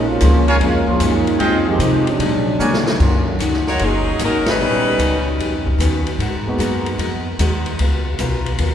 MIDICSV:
0, 0, Header, 1, 9, 480
1, 0, Start_track
1, 0, Key_signature, -6, "minor"
1, 0, Tempo, 398406
1, 1698, Time_signature, 4, 2, 24, 8
1, 10536, End_track
2, 0, Start_track
2, 0, Title_t, "Trumpet section"
2, 0, Program_c, 0, 61
2, 571, Note_on_c, 0, 73, 88
2, 577, Note_on_c, 0, 65, 93
2, 578, Note_on_c, 0, 80, 98
2, 579, Note_on_c, 0, 70, 90
2, 681, Note_off_c, 0, 73, 0
2, 685, Note_off_c, 0, 65, 0
2, 685, Note_off_c, 0, 80, 0
2, 686, Note_off_c, 0, 70, 0
2, 1678, Note_on_c, 0, 68, 76
2, 1681, Note_on_c, 0, 79, 90
2, 1683, Note_on_c, 0, 65, 80
2, 1683, Note_on_c, 0, 75, 75
2, 1903, Note_off_c, 0, 68, 0
2, 1905, Note_off_c, 0, 79, 0
2, 1906, Note_off_c, 0, 65, 0
2, 1906, Note_off_c, 0, 75, 0
2, 3132, Note_on_c, 0, 70, 65
2, 3132, Note_on_c, 0, 80, 81
2, 3134, Note_on_c, 0, 66, 74
2, 3134, Note_on_c, 0, 74, 66
2, 3351, Note_off_c, 0, 70, 0
2, 3351, Note_off_c, 0, 80, 0
2, 3352, Note_off_c, 0, 74, 0
2, 3353, Note_off_c, 0, 66, 0
2, 10536, End_track
3, 0, Start_track
3, 0, Title_t, "Saxophone section"
3, 0, Program_c, 1, 65
3, 4431, Note_on_c, 1, 63, 79
3, 4437, Note_on_c, 1, 66, 80
3, 4439, Note_on_c, 1, 58, 82
3, 4442, Note_on_c, 1, 73, 93
3, 4572, Note_off_c, 1, 63, 0
3, 4575, Note_off_c, 1, 66, 0
3, 4576, Note_off_c, 1, 58, 0
3, 4578, Note_off_c, 1, 73, 0
3, 4609, Note_on_c, 1, 54, 76
3, 4609, Note_on_c, 1, 63, 76
3, 4611, Note_on_c, 1, 68, 89
3, 4622, Note_on_c, 1, 61, 80
3, 5073, Note_off_c, 1, 54, 0
3, 5073, Note_off_c, 1, 63, 0
3, 5074, Note_off_c, 1, 68, 0
3, 5079, Note_off_c, 1, 61, 0
3, 5095, Note_on_c, 1, 70, 90
3, 5102, Note_on_c, 1, 63, 78
3, 5103, Note_on_c, 1, 54, 76
3, 5103, Note_on_c, 1, 61, 74
3, 5377, Note_off_c, 1, 70, 0
3, 5381, Note_off_c, 1, 54, 0
3, 5381, Note_off_c, 1, 63, 0
3, 5382, Note_off_c, 1, 61, 0
3, 5403, Note_on_c, 1, 55, 83
3, 5410, Note_on_c, 1, 63, 78
3, 5411, Note_on_c, 1, 71, 95
3, 5417, Note_on_c, 1, 61, 81
3, 6461, Note_off_c, 1, 55, 0
3, 6465, Note_off_c, 1, 63, 0
3, 6465, Note_off_c, 1, 71, 0
3, 6469, Note_off_c, 1, 61, 0
3, 10536, End_track
4, 0, Start_track
4, 0, Title_t, "Trombone section"
4, 0, Program_c, 2, 61
4, 101, Note_on_c, 2, 65, 98
4, 102, Note_on_c, 2, 56, 88
4, 102, Note_on_c, 2, 58, 92
4, 108, Note_on_c, 2, 61, 90
4, 581, Note_off_c, 2, 56, 0
4, 581, Note_off_c, 2, 65, 0
4, 582, Note_off_c, 2, 58, 0
4, 584, Note_off_c, 2, 61, 0
4, 736, Note_on_c, 2, 56, 81
4, 737, Note_on_c, 2, 61, 84
4, 738, Note_on_c, 2, 65, 93
4, 740, Note_on_c, 2, 58, 80
4, 1183, Note_off_c, 2, 56, 0
4, 1184, Note_off_c, 2, 61, 0
4, 1184, Note_off_c, 2, 65, 0
4, 1185, Note_off_c, 2, 58, 0
4, 1212, Note_on_c, 2, 56, 76
4, 1216, Note_on_c, 2, 58, 75
4, 1218, Note_on_c, 2, 63, 90
4, 1221, Note_on_c, 2, 61, 78
4, 1669, Note_off_c, 2, 56, 0
4, 1674, Note_off_c, 2, 63, 0
4, 1683, Note_on_c, 2, 56, 79
4, 1688, Note_on_c, 2, 60, 76
4, 1689, Note_on_c, 2, 63, 77
4, 1689, Note_on_c, 2, 65, 89
4, 1697, Note_off_c, 2, 58, 0
4, 1699, Note_off_c, 2, 61, 0
4, 1989, Note_off_c, 2, 56, 0
4, 1992, Note_off_c, 2, 60, 0
4, 1992, Note_off_c, 2, 63, 0
4, 1993, Note_off_c, 2, 65, 0
4, 2020, Note_on_c, 2, 51, 82
4, 2021, Note_on_c, 2, 60, 80
4, 2021, Note_on_c, 2, 67, 98
4, 2024, Note_on_c, 2, 56, 86
4, 2466, Note_off_c, 2, 51, 0
4, 2466, Note_off_c, 2, 67, 0
4, 2467, Note_off_c, 2, 60, 0
4, 2468, Note_off_c, 2, 56, 0
4, 2499, Note_on_c, 2, 56, 71
4, 2499, Note_on_c, 2, 62, 80
4, 2500, Note_on_c, 2, 61, 70
4, 2501, Note_on_c, 2, 54, 70
4, 3458, Note_off_c, 2, 62, 0
4, 3459, Note_off_c, 2, 56, 0
4, 3459, Note_off_c, 2, 61, 0
4, 3460, Note_off_c, 2, 54, 0
4, 10536, End_track
5, 0, Start_track
5, 0, Title_t, "Steel-string acoustic guitar"
5, 0, Program_c, 3, 25
5, 0, Note_on_c, 3, 46, 46
5, 0, Note_on_c, 3, 53, 53
5, 0, Note_on_c, 3, 56, 52
5, 0, Note_on_c, 3, 61, 57
5, 122, Note_off_c, 3, 46, 0
5, 132, Note_off_c, 3, 53, 0
5, 133, Note_off_c, 3, 56, 0
5, 136, Note_off_c, 3, 61, 0
5, 262, Note_on_c, 3, 46, 66
5, 263, Note_on_c, 3, 53, 64
5, 268, Note_on_c, 3, 56, 75
5, 279, Note_on_c, 3, 61, 79
5, 598, Note_off_c, 3, 46, 0
5, 599, Note_off_c, 3, 53, 0
5, 601, Note_off_c, 3, 56, 0
5, 607, Note_off_c, 3, 61, 0
5, 720, Note_on_c, 3, 46, 49
5, 728, Note_on_c, 3, 53, 53
5, 742, Note_on_c, 3, 56, 54
5, 750, Note_on_c, 3, 61, 59
5, 1067, Note_off_c, 3, 46, 0
5, 1071, Note_off_c, 3, 53, 0
5, 1078, Note_off_c, 3, 56, 0
5, 1082, Note_off_c, 3, 61, 0
5, 1212, Note_on_c, 3, 46, 68
5, 1223, Note_on_c, 3, 53, 67
5, 1229, Note_on_c, 3, 56, 65
5, 1231, Note_on_c, 3, 61, 69
5, 1553, Note_off_c, 3, 46, 0
5, 1558, Note_off_c, 3, 53, 0
5, 1561, Note_off_c, 3, 56, 0
5, 1562, Note_off_c, 3, 61, 0
5, 1677, Note_on_c, 3, 53, 51
5, 1689, Note_on_c, 3, 56, 53
5, 1694, Note_on_c, 3, 63, 51
5, 1697, Note_on_c, 3, 67, 54
5, 2025, Note_off_c, 3, 53, 0
5, 2031, Note_off_c, 3, 56, 0
5, 2034, Note_off_c, 3, 63, 0
5, 2035, Note_off_c, 3, 67, 0
5, 2190, Note_on_c, 3, 53, 65
5, 2193, Note_on_c, 3, 56, 70
5, 2193, Note_on_c, 3, 63, 66
5, 2205, Note_on_c, 3, 67, 66
5, 2521, Note_off_c, 3, 53, 0
5, 2523, Note_off_c, 3, 56, 0
5, 2523, Note_off_c, 3, 63, 0
5, 2529, Note_off_c, 3, 67, 0
5, 2660, Note_on_c, 3, 46, 46
5, 2669, Note_on_c, 3, 54, 51
5, 2676, Note_on_c, 3, 62, 55
5, 2677, Note_on_c, 3, 56, 53
5, 2996, Note_off_c, 3, 46, 0
5, 3001, Note_off_c, 3, 54, 0
5, 3004, Note_off_c, 3, 62, 0
5, 3005, Note_off_c, 3, 56, 0
5, 3140, Note_on_c, 3, 54, 74
5, 3141, Note_on_c, 3, 46, 70
5, 3152, Note_on_c, 3, 56, 80
5, 3157, Note_on_c, 3, 62, 84
5, 3477, Note_off_c, 3, 46, 0
5, 3477, Note_off_c, 3, 54, 0
5, 3482, Note_off_c, 3, 56, 0
5, 3485, Note_off_c, 3, 62, 0
5, 3608, Note_on_c, 3, 51, 50
5, 3622, Note_on_c, 3, 58, 52
5, 3631, Note_on_c, 3, 61, 52
5, 3639, Note_on_c, 3, 66, 56
5, 3950, Note_off_c, 3, 51, 0
5, 3957, Note_off_c, 3, 58, 0
5, 3962, Note_off_c, 3, 61, 0
5, 3966, Note_off_c, 3, 66, 0
5, 4083, Note_on_c, 3, 51, 70
5, 4092, Note_on_c, 3, 58, 72
5, 4101, Note_on_c, 3, 61, 77
5, 4101, Note_on_c, 3, 66, 79
5, 4428, Note_off_c, 3, 51, 0
5, 4432, Note_off_c, 3, 58, 0
5, 4437, Note_off_c, 3, 61, 0
5, 4437, Note_off_c, 3, 66, 0
5, 4583, Note_on_c, 3, 51, 43
5, 4588, Note_on_c, 3, 58, 46
5, 4599, Note_on_c, 3, 61, 49
5, 4611, Note_on_c, 3, 66, 52
5, 4918, Note_off_c, 3, 51, 0
5, 4921, Note_off_c, 3, 58, 0
5, 4926, Note_off_c, 3, 61, 0
5, 4932, Note_off_c, 3, 66, 0
5, 5063, Note_on_c, 3, 58, 63
5, 5064, Note_on_c, 3, 51, 57
5, 5074, Note_on_c, 3, 61, 72
5, 5080, Note_on_c, 3, 66, 72
5, 5398, Note_off_c, 3, 58, 0
5, 5399, Note_off_c, 3, 51, 0
5, 5404, Note_off_c, 3, 61, 0
5, 5407, Note_off_c, 3, 66, 0
5, 5557, Note_on_c, 3, 51, 49
5, 5558, Note_on_c, 3, 59, 49
5, 5571, Note_on_c, 3, 61, 50
5, 5574, Note_on_c, 3, 67, 57
5, 5886, Note_off_c, 3, 51, 0
5, 5886, Note_off_c, 3, 59, 0
5, 5893, Note_off_c, 3, 61, 0
5, 5894, Note_off_c, 3, 67, 0
5, 6011, Note_on_c, 3, 51, 68
5, 6011, Note_on_c, 3, 59, 71
5, 6021, Note_on_c, 3, 67, 77
5, 6024, Note_on_c, 3, 61, 72
5, 6352, Note_off_c, 3, 51, 0
5, 6352, Note_off_c, 3, 59, 0
5, 6358, Note_off_c, 3, 67, 0
5, 6359, Note_off_c, 3, 61, 0
5, 6498, Note_on_c, 3, 51, 50
5, 6501, Note_on_c, 3, 59, 57
5, 6514, Note_on_c, 3, 61, 59
5, 6517, Note_on_c, 3, 67, 55
5, 6836, Note_off_c, 3, 51, 0
5, 6838, Note_off_c, 3, 59, 0
5, 6844, Note_off_c, 3, 61, 0
5, 6846, Note_off_c, 3, 67, 0
5, 6970, Note_on_c, 3, 51, 71
5, 6986, Note_on_c, 3, 59, 76
5, 6986, Note_on_c, 3, 61, 76
5, 6992, Note_on_c, 3, 67, 74
5, 7312, Note_off_c, 3, 51, 0
5, 7320, Note_off_c, 3, 59, 0
5, 7320, Note_off_c, 3, 61, 0
5, 7323, Note_off_c, 3, 67, 0
5, 7455, Note_on_c, 3, 56, 50
5, 7463, Note_on_c, 3, 59, 54
5, 7477, Note_on_c, 3, 66, 59
5, 7485, Note_on_c, 3, 70, 63
5, 7795, Note_off_c, 3, 56, 0
5, 7799, Note_off_c, 3, 59, 0
5, 7806, Note_off_c, 3, 66, 0
5, 7810, Note_off_c, 3, 70, 0
5, 7934, Note_on_c, 3, 56, 73
5, 7935, Note_on_c, 3, 59, 67
5, 7942, Note_on_c, 3, 66, 76
5, 7953, Note_on_c, 3, 70, 80
5, 8275, Note_off_c, 3, 56, 0
5, 8275, Note_off_c, 3, 59, 0
5, 8279, Note_off_c, 3, 66, 0
5, 8284, Note_off_c, 3, 70, 0
5, 8413, Note_on_c, 3, 56, 53
5, 8420, Note_on_c, 3, 66, 51
5, 8421, Note_on_c, 3, 59, 53
5, 8438, Note_on_c, 3, 70, 60
5, 8754, Note_off_c, 3, 56, 0
5, 8758, Note_off_c, 3, 59, 0
5, 8758, Note_off_c, 3, 66, 0
5, 8767, Note_off_c, 3, 70, 0
5, 8907, Note_on_c, 3, 56, 67
5, 8913, Note_on_c, 3, 59, 71
5, 8920, Note_on_c, 3, 70, 72
5, 8921, Note_on_c, 3, 66, 81
5, 9241, Note_off_c, 3, 56, 0
5, 9245, Note_off_c, 3, 59, 0
5, 9248, Note_off_c, 3, 66, 0
5, 9248, Note_off_c, 3, 70, 0
5, 9407, Note_on_c, 3, 49, 52
5, 9412, Note_on_c, 3, 59, 52
5, 9419, Note_on_c, 3, 65, 55
5, 9428, Note_on_c, 3, 70, 60
5, 9731, Note_off_c, 3, 49, 0
5, 9734, Note_off_c, 3, 59, 0
5, 9738, Note_off_c, 3, 65, 0
5, 9742, Note_off_c, 3, 70, 0
5, 9870, Note_on_c, 3, 49, 65
5, 9878, Note_on_c, 3, 59, 69
5, 9885, Note_on_c, 3, 65, 73
5, 9885, Note_on_c, 3, 70, 79
5, 10203, Note_off_c, 3, 49, 0
5, 10207, Note_off_c, 3, 59, 0
5, 10211, Note_off_c, 3, 65, 0
5, 10211, Note_off_c, 3, 70, 0
5, 10341, Note_on_c, 3, 49, 50
5, 10356, Note_on_c, 3, 59, 50
5, 10363, Note_on_c, 3, 65, 53
5, 10371, Note_on_c, 3, 70, 59
5, 10536, Note_off_c, 3, 49, 0
5, 10536, Note_off_c, 3, 59, 0
5, 10536, Note_off_c, 3, 65, 0
5, 10536, Note_off_c, 3, 70, 0
5, 10536, End_track
6, 0, Start_track
6, 0, Title_t, "Grand piano"
6, 0, Program_c, 4, 0
6, 255, Note_on_c, 4, 53, 57
6, 260, Note_on_c, 4, 56, 57
6, 266, Note_on_c, 4, 58, 52
6, 276, Note_on_c, 4, 61, 56
6, 277, Note_on_c, 4, 65, 65
6, 547, Note_off_c, 4, 53, 0
6, 549, Note_off_c, 4, 56, 0
6, 552, Note_off_c, 4, 58, 0
6, 557, Note_off_c, 4, 61, 0
6, 558, Note_off_c, 4, 65, 0
6, 1056, Note_on_c, 4, 56, 58
6, 1057, Note_on_c, 4, 53, 65
6, 1069, Note_on_c, 4, 58, 61
6, 1070, Note_on_c, 4, 61, 59
6, 1070, Note_on_c, 4, 65, 68
6, 1200, Note_off_c, 4, 56, 0
6, 1201, Note_off_c, 4, 53, 0
6, 1207, Note_off_c, 4, 58, 0
6, 1207, Note_off_c, 4, 61, 0
6, 1207, Note_off_c, 4, 65, 0
6, 2013, Note_on_c, 4, 53, 53
6, 2020, Note_on_c, 4, 60, 51
6, 2022, Note_on_c, 4, 56, 48
6, 2028, Note_on_c, 4, 63, 48
6, 2035, Note_on_c, 4, 67, 59
6, 2622, Note_off_c, 4, 53, 0
6, 2626, Note_off_c, 4, 56, 0
6, 2626, Note_off_c, 4, 60, 0
6, 2630, Note_off_c, 4, 63, 0
6, 2633, Note_off_c, 4, 67, 0
6, 3121, Note_on_c, 4, 50, 57
6, 3129, Note_on_c, 4, 56, 54
6, 3133, Note_on_c, 4, 58, 52
6, 3135, Note_on_c, 4, 61, 52
6, 3153, Note_on_c, 4, 66, 64
6, 3419, Note_off_c, 4, 50, 0
6, 3423, Note_off_c, 4, 56, 0
6, 3425, Note_off_c, 4, 58, 0
6, 3426, Note_off_c, 4, 61, 0
6, 3435, Note_off_c, 4, 66, 0
6, 3599, Note_on_c, 4, 51, 55
6, 3610, Note_on_c, 4, 54, 51
6, 3612, Note_on_c, 4, 58, 52
6, 3617, Note_on_c, 4, 61, 51
6, 3624, Note_on_c, 4, 65, 60
6, 4953, Note_off_c, 4, 51, 0
6, 4959, Note_off_c, 4, 54, 0
6, 4960, Note_off_c, 4, 58, 0
6, 4963, Note_off_c, 4, 61, 0
6, 4966, Note_off_c, 4, 65, 0
6, 5540, Note_on_c, 4, 55, 50
6, 5554, Note_on_c, 4, 59, 45
6, 5559, Note_on_c, 4, 61, 46
6, 5569, Note_on_c, 4, 63, 55
6, 6885, Note_off_c, 4, 55, 0
6, 6892, Note_off_c, 4, 59, 0
6, 6894, Note_off_c, 4, 61, 0
6, 6899, Note_off_c, 4, 63, 0
6, 7788, Note_on_c, 4, 56, 58
6, 7796, Note_on_c, 4, 58, 57
6, 7801, Note_on_c, 4, 59, 55
6, 7809, Note_on_c, 4, 63, 54
6, 7819, Note_on_c, 4, 66, 64
6, 8391, Note_off_c, 4, 56, 0
6, 8395, Note_off_c, 4, 58, 0
6, 8397, Note_off_c, 4, 59, 0
6, 8401, Note_off_c, 4, 63, 0
6, 8407, Note_off_c, 4, 66, 0
6, 10536, End_track
7, 0, Start_track
7, 0, Title_t, "Upright bass"
7, 0, Program_c, 5, 32
7, 0, Note_on_c, 5, 34, 83
7, 239, Note_off_c, 5, 34, 0
7, 257, Note_on_c, 5, 37, 93
7, 720, Note_off_c, 5, 37, 0
7, 727, Note_on_c, 5, 41, 84
7, 1032, Note_off_c, 5, 41, 0
7, 1205, Note_on_c, 5, 42, 92
7, 1669, Note_off_c, 5, 42, 0
7, 1676, Note_on_c, 5, 41, 81
7, 2147, Note_off_c, 5, 41, 0
7, 2154, Note_on_c, 5, 48, 91
7, 2631, Note_off_c, 5, 48, 0
7, 2640, Note_on_c, 5, 46, 84
7, 3113, Note_off_c, 5, 46, 0
7, 3123, Note_on_c, 5, 49, 90
7, 3595, Note_off_c, 5, 49, 0
7, 3614, Note_on_c, 5, 42, 80
7, 4081, Note_off_c, 5, 42, 0
7, 4086, Note_on_c, 5, 37, 87
7, 4557, Note_off_c, 5, 37, 0
7, 4568, Note_on_c, 5, 30, 82
7, 5031, Note_off_c, 5, 30, 0
7, 5038, Note_on_c, 5, 32, 84
7, 5513, Note_off_c, 5, 32, 0
7, 5521, Note_on_c, 5, 34, 77
7, 5994, Note_off_c, 5, 34, 0
7, 6004, Note_on_c, 5, 37, 87
7, 6476, Note_off_c, 5, 37, 0
7, 6485, Note_on_c, 5, 41, 81
7, 6954, Note_off_c, 5, 41, 0
7, 6961, Note_on_c, 5, 39, 86
7, 7435, Note_off_c, 5, 39, 0
7, 7449, Note_on_c, 5, 44, 85
7, 7753, Note_off_c, 5, 44, 0
7, 7929, Note_on_c, 5, 42, 90
7, 8400, Note_off_c, 5, 42, 0
7, 8413, Note_on_c, 5, 41, 81
7, 8882, Note_off_c, 5, 41, 0
7, 8903, Note_on_c, 5, 39, 92
7, 9367, Note_off_c, 5, 39, 0
7, 9387, Note_on_c, 5, 37, 81
7, 9849, Note_off_c, 5, 37, 0
7, 9866, Note_on_c, 5, 35, 91
7, 10329, Note_off_c, 5, 35, 0
7, 10344, Note_on_c, 5, 39, 80
7, 10536, Note_off_c, 5, 39, 0
7, 10536, End_track
8, 0, Start_track
8, 0, Title_t, "Muted upright bass strokes"
8, 1045, Note_on_c, 9, 29, 44
8, 1166, Note_off_c, 9, 29, 0
8, 7778, Note_on_c, 9, 29, 40
8, 7898, Note_off_c, 9, 29, 0
8, 10536, End_track
9, 0, Start_track
9, 0, Title_t, "Drums"
9, 247, Note_on_c, 9, 44, 52
9, 247, Note_on_c, 9, 51, 69
9, 368, Note_off_c, 9, 44, 0
9, 368, Note_off_c, 9, 51, 0
9, 579, Note_on_c, 9, 51, 46
9, 699, Note_off_c, 9, 51, 0
9, 733, Note_on_c, 9, 51, 61
9, 853, Note_off_c, 9, 51, 0
9, 1204, Note_on_c, 9, 44, 62
9, 1204, Note_on_c, 9, 51, 73
9, 1325, Note_off_c, 9, 44, 0
9, 1325, Note_off_c, 9, 51, 0
9, 1532, Note_on_c, 9, 51, 49
9, 1653, Note_off_c, 9, 51, 0
9, 1685, Note_on_c, 9, 51, 63
9, 1806, Note_off_c, 9, 51, 0
9, 2167, Note_on_c, 9, 44, 67
9, 2167, Note_on_c, 9, 51, 65
9, 2287, Note_off_c, 9, 44, 0
9, 2287, Note_off_c, 9, 51, 0
9, 2495, Note_on_c, 9, 51, 48
9, 2615, Note_off_c, 9, 51, 0
9, 2648, Note_on_c, 9, 51, 69
9, 2768, Note_off_c, 9, 51, 0
9, 3127, Note_on_c, 9, 44, 60
9, 3247, Note_off_c, 9, 44, 0
9, 3292, Note_on_c, 9, 38, 64
9, 3412, Note_off_c, 9, 38, 0
9, 3450, Note_on_c, 9, 38, 87
9, 3570, Note_off_c, 9, 38, 0
9, 3615, Note_on_c, 9, 49, 74
9, 3616, Note_on_c, 9, 36, 69
9, 3735, Note_off_c, 9, 49, 0
9, 3736, Note_off_c, 9, 36, 0
9, 4100, Note_on_c, 9, 44, 52
9, 4100, Note_on_c, 9, 51, 64
9, 4220, Note_off_c, 9, 44, 0
9, 4220, Note_off_c, 9, 51, 0
9, 4258, Note_on_c, 9, 38, 28
9, 4378, Note_off_c, 9, 38, 0
9, 4419, Note_on_c, 9, 38, 41
9, 4540, Note_off_c, 9, 38, 0
9, 4571, Note_on_c, 9, 51, 61
9, 4691, Note_off_c, 9, 51, 0
9, 5051, Note_on_c, 9, 44, 60
9, 5051, Note_on_c, 9, 51, 69
9, 5172, Note_off_c, 9, 44, 0
9, 5172, Note_off_c, 9, 51, 0
9, 5377, Note_on_c, 9, 38, 78
9, 5377, Note_on_c, 9, 51, 66
9, 5498, Note_off_c, 9, 38, 0
9, 5498, Note_off_c, 9, 51, 0
9, 6017, Note_on_c, 9, 44, 48
9, 6017, Note_on_c, 9, 51, 69
9, 6138, Note_off_c, 9, 44, 0
9, 6138, Note_off_c, 9, 51, 0
9, 6510, Note_on_c, 9, 51, 58
9, 6630, Note_off_c, 9, 51, 0
9, 6826, Note_on_c, 9, 36, 58
9, 6947, Note_off_c, 9, 36, 0
9, 6991, Note_on_c, 9, 44, 62
9, 6991, Note_on_c, 9, 51, 71
9, 7111, Note_off_c, 9, 44, 0
9, 7111, Note_off_c, 9, 51, 0
9, 7308, Note_on_c, 9, 51, 45
9, 7428, Note_off_c, 9, 51, 0
9, 7472, Note_on_c, 9, 51, 58
9, 7592, Note_off_c, 9, 51, 0
9, 7951, Note_on_c, 9, 44, 58
9, 7951, Note_on_c, 9, 51, 60
9, 8071, Note_off_c, 9, 44, 0
9, 8071, Note_off_c, 9, 51, 0
9, 8267, Note_on_c, 9, 51, 46
9, 8388, Note_off_c, 9, 51, 0
9, 8424, Note_on_c, 9, 51, 60
9, 8544, Note_off_c, 9, 51, 0
9, 8905, Note_on_c, 9, 44, 65
9, 8905, Note_on_c, 9, 51, 76
9, 9026, Note_off_c, 9, 44, 0
9, 9026, Note_off_c, 9, 51, 0
9, 9227, Note_on_c, 9, 51, 46
9, 9348, Note_off_c, 9, 51, 0
9, 9385, Note_on_c, 9, 51, 63
9, 9505, Note_off_c, 9, 51, 0
9, 9863, Note_on_c, 9, 44, 56
9, 9863, Note_on_c, 9, 51, 64
9, 9983, Note_off_c, 9, 44, 0
9, 9983, Note_off_c, 9, 51, 0
9, 10195, Note_on_c, 9, 51, 47
9, 10315, Note_off_c, 9, 51, 0
9, 10343, Note_on_c, 9, 51, 65
9, 10463, Note_off_c, 9, 51, 0
9, 10536, End_track
0, 0, End_of_file